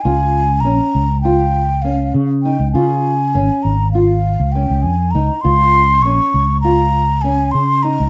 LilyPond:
<<
  \new Staff \with { instrumentName = "Flute" } { \time 9/8 \key des \lydian \tempo 4. = 67 aes''4 bes''4 g''4 f''8 r8 g''8 | aes''4. bes''8 f''4 g''8 aes''8 bes''8 | c'''4 des'''4 bes''4 aes''8 c'''8 bes''8 | }
  \new Staff \with { instrumentName = "Nylon-string guitar" } { \time 9/8 \key des \lydian f'4 des'4 f'4 des'4 ees'8 | f'4 des'4 f'4 des'4 ees'8 | f'4 des'4 f'4 des'4 ees'8 | }
  \new Staff \with { instrumentName = "Fretless electric bass" } { \clef bass \time 9/8 \key des \lydian des,4 bes,,16 r16 des,2 des8. des,16 | des4 aes,,16 r16 aes,,4~ aes,,16 des,8 des,16 f,8 des,16 r16 | des,4 bes,,16 r16 des,2 des8. des,16 | }
>>